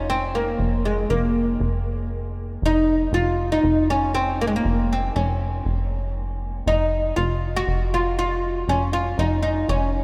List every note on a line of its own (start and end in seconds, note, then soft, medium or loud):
0.00 0.56 F1 medium
0.10 0.36 C4 medium
0.35 0.85 A#3 medium
0.59 1.06 F1 medium
0.85 1.10 G#3 medium
1.10 1.57 F1 loud
1.10 2.08 A#3 medium
1.60 2.58 F1 medium
2.62 3.09 F1 medium
2.62 3.14 D#4 medium
3.12 3.59 F1 loud
3.12 3.52 F4 medium
3.52 3.90 D#4 medium
3.64 4.61 F1 medium
3.90 4.14 C#4 medium
4.15 4.38 C4 medium
4.41 4.47 A#3 medium
4.47 4.54 G#3 medium
4.56 4.92 A#3 medium
4.65 5.11 F1 medium
4.93 5.15 C4 medium
5.16 5.62 F1 loud
5.16 6.12 C#4 medium
5.65 6.62 F1 medium
6.66 7.13 F1 medium
6.66 7.14 D#4 medium
7.16 7.64 F1 loud
7.16 7.52 F4 medium
7.56 7.93 F#4 medium
7.67 8.64 F1 medium
7.94 8.17 F4 medium
8.19 8.69 F4 medium
8.68 9.14 F1 medium
8.68 8.93 C#4 medium
8.93 9.19 F4 medium
9.18 9.65 F1 loud
9.18 9.41 D#4 medium
9.43 9.69 D#4 medium
9.69 10.04 F1 medium
9.69 10.04 C#4 medium